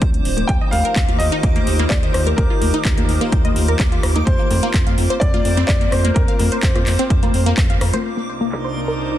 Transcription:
Already playing: analog synth pad F3 C4 D4, synth texture C5 D6
0.01 analog synth bass D2, kick, closed hi-hat, high conga
0.14 closed hi-hat
0.25 analog synth bass D1, open hi-hat
0.37 closed hi-hat, cowbell, high conga
0.47 analog synth bass D#2, analog synth pad D#3 D#4 F4 G4 A#4, grand piano G5, kick, closed hi-hat
0.61 synth pluck D#5
0.71 analog synth bass D#2, grand piano F5, open hi-hat, cowbell, high conga, high woodblock
0.85 synth pluck A#4, closed hi-hat
0.96 analog synth bass D#2, kick, clap, closed hi-hat
1.08 analog synth bass D#2, synth pluck F4, closed hi-hat, high conga
1.18 analog synth bass D#2, grand piano D#5, open hi-hat
1.32 synth pluck D#4, closed hi-hat
1.43 analog synth bass D#2, kick, closed hi-hat
1.56 synth pluck A#3, closed hi-hat, high conga
1.67 analog synth bass D#2, open hi-hat
1.79 synth pluck A#3, closed hi-hat, high woodblock
1.89 analog synth bass D#2, grand piano D5, kick, cross-stick, clap, closed hi-hat, high conga
2.03 synth pluck D#5, closed hi-hat
2.13 analog synth bass D#2, grand piano C5, cross-stick, open hi-hat
2.26 synth pluck A#4, closed hi-hat, high conga
2.36 analog synth bass D#2, grand piano A#4, kick, closed hi-hat
2.50 synth pluck F4
2.61 analog synth bass D#2, open hi-hat, cowbell, high conga
2.74 synth pluck D#4, closed hi-hat
2.85 analog synth bass D#2, kick, clap, closed hi-hat
2.97 analog synth bass D#2, synth pluck A#3, closed hi-hat, cowbell, high conga
3.09 analog synth bass D#2, open hi-hat
3.21 synth pluck A#3, closed hi-hat
3.32 analog synth bass D#2, kick, closed hi-hat
3.44 synth pluck D#5, closed hi-hat, high conga, high woodblock
3.56 analog synth bass D#2, open hi-hat
3.68 synth pluck A#4, closed hi-hat
3.79 analog synth bass D#2, kick, cross-stick, clap, closed hi-hat, high conga
3.92 synth pluck F4, closed hi-hat
4.03 analog synth bass D#2, cross-stick, open hi-hat, high woodblock
4.15 synth pluck D#4, closed hi-hat, cowbell, high conga
4.25 analog synth bass F2, analog synth pad A#3 C4, grand piano C5, kick, closed hi-hat
4.39 synth pluck A#3
4.50 analog synth bass F2, open hi-hat, cowbell, high conga, high woodblock
4.63 synth pluck A#3, closed hi-hat
4.74 analog synth bass F2, kick, clap, closed hi-hat
4.86 analog synth bass F2, synth pluck F5, closed hi-hat, high conga
4.98 analog synth bass F2, open hi-hat
5.10 synth pluck C5, closed hi-hat
5.20 analog synth bass F2, grand piano D5, kick, closed hi-hat
5.34 synth pluck F4, closed hi-hat, high conga
5.45 analog synth bass F2, open hi-hat
5.57 synth pluck C4, closed hi-hat, high woodblock
5.67 analog synth bass F2, grand piano D5, kick, cross-stick, clap, closed hi-hat, high conga
5.81 synth pluck A#3, closed hi-hat
5.91 analog synth bass F2, grand piano C5, cross-stick, open hi-hat
6.04 synth pluck A#3, closed hi-hat, high conga
6.14 analog synth bass F2, grand piano A#4, kick, closed hi-hat
6.28 synth pluck F5, closed hi-hat
6.39 analog synth bass F2, open hi-hat, cowbell, high conga, high woodblock
6.52 synth pluck C5, closed hi-hat
6.62 analog synth bass F2, grand piano C5, kick, clap, closed hi-hat
6.75 analog synth bass F2, synth pluck F4, cross-stick, closed hi-hat, cowbell, high conga
6.86 analog synth bass F2, clap, open hi-hat
6.99 synth pluck C4, closed hi-hat
7.10 analog synth bass F2, kick, closed hi-hat
7.23 synth pluck A#3, closed hi-hat, high conga, high woodblock
7.34 analog synth bass F2, open hi-hat
7.46 synth pluck A#3, closed hi-hat
7.57 analog synth bass F2, kick, cross-stick, clap, closed hi-hat, high conga
7.70 synth pluck F5, closed hi-hat
7.81 analog synth bass F2, cross-stick, open hi-hat, high woodblock
7.94 synth pluck C5, closed hi-hat, cowbell, high conga
8.05 analog synth pad C2 C3 D4 D#4 A#4, synth texture C5 D6, closed hi-hat
8.17 synth pluck A#3, closed hi-hat
8.28 open hi-hat
8.41 synth pluck A#3
8.52 clap
8.64 synth pluck C5
8.76 open hi-hat
8.88 synth pluck A#4
9.12 synth pluck D#4

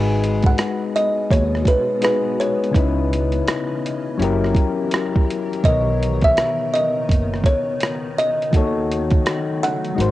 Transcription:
Already playing: upright bass G#1, ambient pad B2 G#3 B3 F#4, synth keys G#3 D#4 F#4 G#4 B4, kalimba G#5
0.24 closed hi-hat
0.42 kalimba F#5, kick, closed hi-hat
0.58 cross-stick, closed hi-hat
0.96 kalimba D#5, closed hi-hat
1.31 upright bass D#2, kalimba C#5, kick, closed hi-hat
1.55 cross-stick
1.65 kalimba B4, kick, closed hi-hat
2.01 synth keys G#3 D#4 F#4 G#4 B4, kalimba B4, cross-stick, closed hi-hat
2.40 kalimba C#5, closed hi-hat
2.64 closed hi-hat
2.71 upright bass C#2, synth keys C#3 C#4 D#4, ambient pad C#3 E3 D#5, kick
2.76 synth keys E4 B4, closed hi-hat
3.13 closed hi-hat
3.32 closed hi-hat
3.48 cross-stick, closed hi-hat
3.86 closed hi-hat
4.17 upright bass F#1, ambient pad E3 F#3 G4 A#4, synth keys F#3 C#4 E4
4.22 synth keys G4 A#4, closed hi-hat
4.44 cross-stick
4.55 kick, closed hi-hat
4.91 cross-stick, closed hi-hat
5.16 kick
5.30 closed hi-hat
5.53 closed hi-hat
5.63 upright bass B1, synth keys B2 D#3 B3, ambient pad C#3 D#3 B3, kalimba D#5, kick, closed hi-hat
5.68 synth keys A#4 C#5
6.03 closed hi-hat
6.21 kalimba E5, kick, closed hi-hat
6.37 cross-stick, closed hi-hat
6.74 kalimba D#5, closed hi-hat
7.09 upright bass F#1, kick, closed hi-hat
7.34 cross-stick
7.44 kalimba C#5, kick, closed hi-hat
7.80 cross-stick, closed hi-hat
8.18 kalimba D#5, closed hi-hat
8.42 closed hi-hat
8.51 upright bass D#2, synth keys D#3 D#4 F#4, ambient pad F#3 A3, kick, closed hi-hat
8.56 synth keys A4 C#5
8.91 closed hi-hat
9.10 kick, closed hi-hat
9.26 cross-stick, closed hi-hat
9.63 kalimba F#5, closed hi-hat
9.85 closed hi-hat
9.95 upright bass G#1, ambient pad C3 F#3 G#3, synth keys G#3 D#4 F#4
9.99 synth keys A#4 C5, closed hi-hat

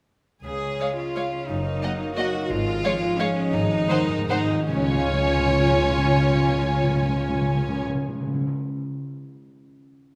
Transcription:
0.44 double bass section C#2, harp C#3, cello section G#4
0.62 harp C#4
0.78 harp G#3, viola section G#3, violin section C#5 F5
0.97 harp C#4, cello section F4
1.15 viola section G#3, harp F4, violin section C#5 F5
1.32 harp C#4
1.49 double bass section F#1, harp F#2, cello section D#4
1.65 harp A#3
1.83 harp F#3, viola section A#3, violin section D#5 F#5
2.00 harp A#3
2.17 viola section A#3, harp D#4, cello section F#4, violin section D#5 F#5
2.34 harp A#3
2.43 cello section F#4
2.50 double bass section G#1, harp G#2, cello section F4
2.67 harp G#3
2.83 harp F3, viola section G#3, violin section C#5 F5
3.02 harp G#3
3.18 viola section G#3, cello section C#4, harp C#4, violin section C#5 F5
3.36 harp G#3
3.53 double bass section G#1, harp G#2, timpani G#2, cello section D#4
3.61 timpani G#2
3.71 harp G#3
3.85 timpani G#2
3.89 timpani G#2, harp D#3, viola section G#3, violin section C5 F#5
4.01 timpani G#2
4.09 timpani G#2, harp G#3
4.18 timpani G#2
4.27 timpani G#2, viola section G#3, harp C4, cello section D#4, violin section C5 F#5
4.35 timpani G#2
4.44 timpani G#2
4.50 timpani G#2, harp G#3
4.69 double bass section C#2, timpani C#3, harp C#3, cello section C#4, viola section F4, violin section C#5 G#5
4.75 timpani C#3, harp G#3
4.81 timpani C#3, harp C#4
4.88 timpani C#3, harp F4
4.94 timpani C#3, harp C#5
5.01 timpani C#3
5.07 timpani C#3
5.13 timpani C#3
5.20 timpani C#3
5.27 timpani C#3
5.33 timpani C#3
5.40 timpani C#3
5.46 timpani C#3
5.53 timpani C#3
5.59 timpani C#3
5.66 timpani C#3
5.72 timpani C#3
5.78 timpani C#3
5.85 timpani C#3
5.91 timpani C#3
5.98 timpani C#3
6.04 timpani C#3
6.10 timpani C#3
6.16 timpani C#3
6.23 timpani C#3
6.29 timpani C#3
6.36 timpani C#3
6.42 timpani C#3
6.49 timpani C#3
6.55 timpani C#3
6.62 timpani C#3
6.69 timpani C#3
6.76 timpani C#3
6.83 timpani C#3
6.89 timpani C#3
6.96 timpani C#3
7.02 timpani C#3
7.09 timpani C#3
7.15 timpani C#3
7.22 timpani C#3
7.29 timpani C#3
7.35 timpani C#3
7.42 timpani C#3
7.48 timpani C#3
7.55 timpani C#3
7.62 timpani C#3
7.68 timpani C#3
7.75 timpani C#3
7.81 timpani C#3
7.88 timpani C#3
7.95 timpani C#3
8.02 timpani C#3
8.08 timpani C#3
8.15 timpani C#3
8.21 timpani C#3
8.27 timpani C#3
8.34 timpani C#3
8.41 timpani C#3
8.47 timpani C#3

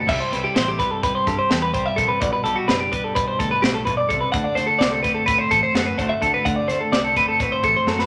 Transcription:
0.07 fingered electric bass C2, clean electric guitar C3 G3 E4 G4 A4 E5, kick, crash
0.20 clean electric guitar C5
0.31 fingered electric bass C2, clean electric guitar G3 B4, snare, closed hi-hat
0.44 clean electric guitar G4
0.55 fingered electric bass A1, clean electric guitar E4 C5, snare, closed hi-hat
0.68 clean electric guitar G4
0.79 clean electric guitar G3 B4, kick, snare, closed hi-hat
0.91 clean electric guitar A4
1.02 clean electric guitar G3 B4, kick, closed hi-hat
1.15 clean electric guitar C5
1.27 fingered electric bass G2, clean electric guitar G4 A4, kick, snare, closed hi-hat
1.39 clean electric guitar C5
1.50 fingered electric bass E2, clean electric guitar G4 A4, snare, closed hi-hat
1.62 clean electric guitar B4
1.74 fingered electric bass C2, clean electric guitar G3 C5, kick, closed hi-hat
1.86 clean electric guitar E5
1.96 fingered electric bass A#1, clean electric guitar C3 A4, kick, closed hi-hat
2.08 clean electric guitar B4
2.21 fingered electric bass B1, clean electric guitar B2 D5, kick, closed hi-hat
2.33 clean electric guitar B4
2.44 fingered electric bass B1, clean electric guitar G3 A4, closed hi-hat
2.56 clean electric guitar F#4
2.68 fingered electric bass F#1, clean electric guitar D4 B4, snare, closed hi-hat
2.80 clean electric guitar G4
2.92 clean electric guitar G3 B4, kick, closed hi-hat
3.04 clean electric guitar A4
3.15 clean electric guitar B2 B4, kick, closed hi-hat
3.28 clean electric guitar C5
3.39 fingered electric bass D2, clean electric guitar A4, kick, snare, closed hi-hat
3.51 clean electric guitar B4
3.62 fingered electric bass B1, clean electric guitar A2 G4, snare, closed hi-hat
3.74 clean electric guitar A4
3.85 fingered electric bass B1, clean electric guitar B2 B4, kick, closed hi-hat
3.97 clean electric guitar D5
4.09 fingered electric bass C2, clean electric guitar C3 A4, kick, closed hi-hat
4.21 clean electric guitar B4
4.32 fingered electric bass D2, clean electric guitar D3 F#5, kick, closed hi-hat
4.44 clean electric guitar D5
4.55 fingered electric bass D2, clean electric guitar A3 C5, snare, closed hi-hat
4.67 clean electric guitar A4
4.79 fingered electric bass C2, clean electric guitar C4 D5, snare, closed hi-hat
4.91 clean electric guitar A4
5.03 clean electric guitar A3 B4, kick, snare, closed hi-hat
5.14 clean electric guitar A4
5.26 clean electric guitar A2 B4, kick, closed hi-hat
5.38 clean electric guitar C5
5.51 fingered electric bass A1, clean electric guitar A4 C5, kick, snare, closed hi-hat
5.63 clean electric guitar C5
5.74 fingered electric bass F#2, clean electric guitar F#4 A4, snare, closed hi-hat
5.86 clean electric guitar B4
5.98 fingered electric bass D2, clean electric guitar A3 C5, kick, closed hi-hat
6.09 clean electric guitar E5
6.21 fingered electric bass D2, clean electric guitar D3 A4, kick, closed hi-hat
6.34 clean electric guitar B4
6.45 fingered electric bass D2, clean electric guitar D3 F#5, kick, closed hi-hat
6.56 clean electric guitar D5
6.68 fingered electric bass D2, clean electric guitar A3 C5, snare, closed hi-hat
6.81 clean electric guitar A4
6.92 fingered electric bass C2, clean electric guitar C4 D5, snare, closed hi-hat
7.04 clean electric guitar A4
7.15 clean electric guitar A3 B4, kick, closed hi-hat
7.28 clean electric guitar A4
7.39 clean electric guitar A2 B4, kick, snare, closed hi-hat
7.52 clean electric guitar C5
7.64 fingered electric bass A1, clean electric guitar A4 C5, kick, closed hi-hat
7.76 clean electric guitar C5
7.87 fingered electric bass F#2, clean electric guitar F#3 A4, snare
7.99 clean electric guitar B4, snare

